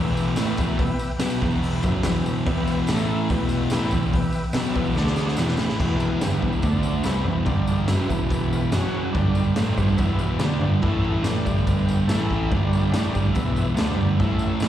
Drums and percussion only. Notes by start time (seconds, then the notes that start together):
0.17 tambourine
0.36 snare, open hi-hat, tambourine
0.57 kick, tambourine
0.68 tambourine
0.79 kick, open hi-hat
0.99 tambourine
1.20 snare, open hi-hat, tambourine
1.30 tambourine
1.41 kick, tambourine
1.51 tambourine
1.62 open hi-hat, tambourine
1.83 kick, tambourine
2.03 snare, open hi-hat, tambourine
2.14 tambourine
2.26 tambourine
2.36 tambourine
2.46 kick, open hi-hat
2.67 tambourine
2.87 snare, open hi-hat, tambourine
2.98 tambourine
3.07 tambourine
3.29 kick, open hi-hat, tambourine
3.49 tambourine
3.70 snare, open hi-hat, tambourine
3.81 tambourine
3.91 kick, tambourine
4.03 tambourine
4.13 kick, open hi-hat, tambourine
4.22 tambourine
4.33 tambourine
4.44 tambourine
4.53 snare, open hi-hat, tambourine
4.63 tambourine
4.75 kick, tambourine
4.84 tambourine
4.95 snare, tambourine
5.05 snare, tambourine
5.16 snare, tambourine
5.28 snare
5.37 snare, tambourine
5.47 snare, tambourine
5.57 snare, tambourine
5.69 snare, tambourine
5.80 kick, floor tom, crash, tambourine
6.00 floor tom, tambourine
6.21 snare, floor tom, tambourine
6.42 kick, floor tom
6.52 tambourine
6.62 kick, floor tom, tambourine
6.83 floor tom, tambourine
7.04 snare, floor tom, tambourine
7.26 floor tom
7.46 kick, floor tom, tambourine
7.67 floor tom, tambourine
7.88 snare, floor tom, tambourine
8.10 kick, floor tom, tambourine
8.20 tambourine
8.30 kick, floor tom, tambourine
8.53 floor tom, tambourine
8.72 snare, floor tom, tambourine
8.95 floor tom
9.15 kick, floor tom, tambourine
9.35 floor tom, tambourine
9.56 snare, floor tom, tambourine
9.77 kick, floor tom, tambourine
9.88 tambourine
9.98 kick, floor tom, tambourine
10.19 floor tom, tambourine
10.39 snare, floor tom, tambourine
10.61 floor tom
10.82 kick, floor tom
11.04 floor tom
11.24 snare, floor tom, tambourine
11.36 tambourine
11.46 kick, floor tom, tambourine
11.57 tambourine
11.67 kick, floor tom, tambourine
11.78 tambourine
11.89 floor tom, tambourine
12.09 snare, floor tom, tambourine
12.20 tambourine
12.30 kick, floor tom
12.51 kick, floor tom, tambourine
12.73 floor tom, tambourine
12.94 snare, floor tom, tambourine
13.15 kick, floor tom, tambourine
13.35 kick, floor tom, tambourine
13.56 floor tom, tambourine
13.77 snare, floor tom, tambourine
14.00 floor tom
14.19 kick, floor tom, tambourine
14.39 floor tom, tambourine
14.60 snare, floor tom, tambourine